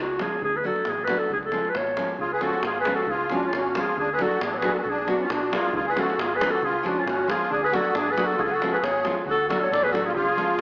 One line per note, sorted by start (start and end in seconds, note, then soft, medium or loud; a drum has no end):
0.00 0.25 C#2 medium
0.00 0.23 F#4 medium
0.19 0.37 F3 soft
0.19 0.38 G#3 soft
0.19 0.38 C#4 medium
0.19 0.38 F4 medium
0.19 0.44 G#4 medium
0.19 davul high medium
0.42 0.69 D2 medium
0.42 0.58 G#4 medium
0.42 davul low medium
0.57 0.67 B4 medium
0.64 0.81 F#3 medium
0.64 0.82 A3 medium
0.64 0.82 D4 soft
0.64 0.83 F#4 medium
0.64 0.91 A4 medium
0.76 davul high soft
0.85 1.14 A1 medium
0.85 davul high medium
0.89 1.06 G#4 loud
1.04 1.26 F#3 soft
1.04 1.20 B4 medium
1.04 davul high medium
1.09 1.26 A3 soft
1.09 1.26 D4 soft
1.09 1.26 F#4 medium
1.18 1.33 A4 medium
1.30 1.58 C#2 medium
1.30 1.38 G#4 medium
1.30 davul low medium
1.43 1.70 A4 medium
1.43 davul high soft
1.52 1.70 F3 medium
1.52 1.70 G#3 soft
1.52 1.70 C#4 soft
1.52 1.71 F4 medium
1.52 davul high soft
1.65 davul high soft
1.69 1.78 B4 medium
1.75 2.02 G#1 medium
1.75 2.11 C#5 medium
1.75 davul high medium
1.87 davul high soft
1.96 2.14 F3 soft
1.96 2.15 G#3 soft
1.96 2.15 C#4 soft
1.96 2.15 F4 soft
1.96 davul high medium
2.10 davul high soft
2.18 2.46 C#2 medium
2.18 2.32 F4 medium
2.18 2.34 G#4 medium
2.18 davul low medium
2.32 2.43 G#4 medium
2.32 2.43 B4 medium
2.41 2.59 F3 medium
2.41 2.59 G#3 medium
2.41 2.59 C#4 soft
2.41 2.59 F4 medium
2.41 2.65 F#4 medium
2.41 2.64 A4 medium
2.41 davul high soft
2.53 davul high soft
2.63 2.91 G#1 medium
2.63 2.78 F4 medium
2.63 2.79 G#4 medium
2.63 davul high medium
2.79 2.93 G#4 medium
2.79 2.93 B4 medium
2.85 3.03 F3 medium
2.85 3.03 G#3 medium
2.85 3.03 C#4 soft
2.85 3.04 F4 medium
2.85 davul high medium
2.93 3.07 F#4 medium
2.93 3.12 A4 medium
3.07 3.35 C#2 medium
3.07 3.31 F4 medium
3.07 davul low medium
3.11 3.32 G#4 medium
3.30 3.48 F3 medium
3.30 3.48 G#3 soft
3.30 3.48 C#4 medium
3.30 3.43 D4 medium
3.30 3.48 F4 medium
3.30 davul high soft
3.34 3.49 F#4 medium
3.43 3.53 C#4 medium
3.43 davul high soft
3.47 3.60 F4 medium
3.53 3.80 G#1 medium
3.53 3.76 C#4 medium
3.53 davul high medium
3.58 3.81 F#4 medium
3.75 3.92 F3 medium
3.75 3.92 G#3 soft
3.75 3.93 C#4 medium
3.75 3.98 F4 medium
3.75 3.93 F4 medium
3.75 davul high medium
3.79 3.99 G#4 medium
3.97 4.24 D2 medium
3.97 4.10 D4 medium
3.97 4.15 G#4 medium
3.97 davul low medium
4.13 4.21 G#4 medium
4.13 4.23 B4 medium
4.19 4.36 F#3 medium
4.19 4.36 A3 soft
4.19 4.37 D4 medium
4.19 4.37 F#4 medium
4.19 4.43 A4 medium
4.19 davul high medium
4.23 4.43 F#4 medium
4.31 davul high soft
4.41 4.68 A1 medium
4.41 4.55 D4 medium
4.41 4.56 G#4 medium
4.41 davul high medium
4.54 4.72 G#4 medium
4.54 4.57 A4 medium
4.54 4.75 B4 medium
4.54 4.59 C#5 medium
4.62 4.80 F#3 medium
4.62 4.80 A3 soft
4.62 4.80 D4 soft
4.62 4.81 F#4 medium
4.62 davul high medium
4.73 4.77 F#4 medium
4.73 4.79 A4 medium
4.78 4.87 F#4 medium
4.78 4.80 G#4 medium
4.78 4.84 B4 medium
4.82 5.12 B1 medium
4.82 4.91 A4 medium
4.82 davul low medium
4.89 5.09 D4 medium
4.89 5.13 G#4 medium
4.98 davul high soft
5.07 5.24 F#3 medium
5.07 5.24 B3 medium
5.07 5.25 D4 medium
5.07 5.21 D4 medium
5.07 5.25 F#4 medium
5.07 davul high soft
5.11 5.25 F#4 medium
5.21 5.30 C#4 medium
5.21 5.34 F4 medium
5.30 5.57 B1 medium
5.30 5.52 D4 medium
5.30 5.57 F#4 medium
5.30 davul high medium
5.51 5.68 F#3 soft
5.51 5.69 B3 soft
5.51 5.69 D4 soft
5.51 5.74 F4 medium
5.51 5.69 F#4 medium
5.51 5.76 G#4 medium
5.51 davul high medium
5.65 davul high soft
5.73 6.01 C#2 medium
5.73 5.86 F4 medium
5.73 5.91 G#4 medium
5.73 davul low loud
5.87 5.96 G#4 medium
5.87 6.01 B4 medium
5.96 6.13 F3 medium
5.96 6.13 G#3 medium
5.96 6.13 C#4 soft
5.96 6.13 F4 medium
5.96 6.19 F#4 medium
5.96 6.22 A4 medium
5.96 davul high medium
6.10 davul high soft
6.18 6.45 G#1 medium
6.18 6.33 F4 medium
6.18 6.37 G#4 medium
6.18 davul high medium
6.36 6.49 G#4 medium
6.36 6.52 B4 medium
6.40 6.57 F3 medium
6.40 6.57 G#3 medium
6.40 6.57 C#4 soft
6.40 6.58 F4 medium
6.40 davul high medium
6.49 6.63 F#4 medium
6.49 6.66 A4 medium
6.62 6.88 C#2 medium
6.62 6.85 F4 medium
6.62 6.88 G#4 medium
6.62 davul low medium
6.83 7.01 F3 medium
6.83 7.01 G#3 medium
6.83 7.01 C#4 medium
6.83 6.97 D4 medium
6.83 7.01 F4 medium
6.83 7.01 F#4 medium
6.83 davul high soft
6.97 7.04 C#4 medium
6.97 7.10 F4 medium
6.97 davul high soft
7.06 7.32 G#1 medium
7.06 7.28 C#4 medium
7.06 7.32 F#4 medium
7.06 davul high medium
7.27 7.45 F3 medium
7.27 7.45 G#3 soft
7.27 7.45 C#4 medium
7.27 7.50 F4 medium
7.27 7.46 F4 medium
7.27 7.52 G#4 medium
7.27 davul high medium
7.50 7.77 D2 medium
7.50 7.61 D4 medium
7.50 7.66 G#4 loud
7.50 davul low medium
7.62 7.72 G#4 medium
7.62 7.76 B4 loud
7.71 7.89 F#3 medium
7.71 7.89 A3 medium
7.71 7.90 D4 medium
7.71 7.94 F#4 medium
7.71 7.90 F#4 medium
7.71 7.99 A4 medium
7.71 davul high medium
7.85 davul high soft
7.95 8.21 A1 medium
7.95 8.09 D4 medium
7.95 8.12 G#4 medium
7.95 davul high medium
8.10 8.25 G#4 medium
8.10 8.27 B4 medium
8.17 8.33 F#3 medium
8.17 8.33 A3 soft
8.17 8.34 D4 soft
8.17 8.34 F#4 medium
8.17 davul high medium
8.24 8.36 F#4 medium
8.24 8.41 A4 medium
8.37 8.65 C#2 medium
8.37 8.41 F4 medium
8.37 8.43 F#4 medium
8.37 8.42 G#4 medium
8.37 davul low medium
8.41 8.50 F4 medium
8.41 8.53 G#4 medium
8.41 8.46 A4 medium
8.50 8.70 F#4 medium
8.50 8.74 A4 medium
8.50 davul high soft
8.62 8.78 F3 medium
8.62 8.78 G#3 medium
8.62 8.79 C#4 medium
8.62 8.79 F4 medium
8.62 davul high medium
8.72 8.76 F#4 medium
8.72 8.79 G#4 medium
8.72 8.80 A4 medium
8.72 8.76 B4 medium
8.79 9.16 G#4 medium
8.79 8.85 B4 medium
8.83 9.09 G#1 medium
8.83 9.17 C#5 medium
8.83 davul high medium
9.04 9.21 F3 soft
9.04 9.21 G#3 medium
9.04 9.22 C#4 medium
9.04 9.22 F4 medium
9.04 davul high medium
9.19 davul high soft
9.26 9.52 D2 medium
9.26 9.46 F#4 medium
9.26 davul low medium
9.30 9.49 A4 loud
9.47 9.66 F#3 medium
9.47 9.66 A3 medium
9.47 9.66 D4 medium
9.47 9.59 F#4 medium
9.47 9.66 F#4 medium
9.47 9.60 A4 medium
9.47 davul high medium
9.60 9.69 A4 medium
9.60 9.74 C#5 medium
9.71 10.14 A1 medium
9.71 9.83 A4 medium
9.71 9.85 D5 loud
9.71 davul high medium
9.84 9.93 G#4 medium
9.84 9.93 B4 medium
9.84 davul high soft
9.91 10.09 F#3 medium
9.91 10.10 A3 soft
9.91 10.10 D4 medium
9.91 10.04 F#4 medium
9.91 10.10 F#4 medium
9.91 10.04 A4 medium
9.91 davul high medium
10.05 10.13 F4 medium
10.05 10.14 G#4 medium
10.14 10.41 C#2 loud
10.14 10.61 F4 medium
10.14 10.61 G#4 medium
10.14 davul low medium
10.37 10.53 F3 medium
10.37 10.53 G#3 soft
10.37 10.54 C#4 medium
10.37 10.55 F4 medium
10.37 davul high soft
10.58 10.61 G#1 medium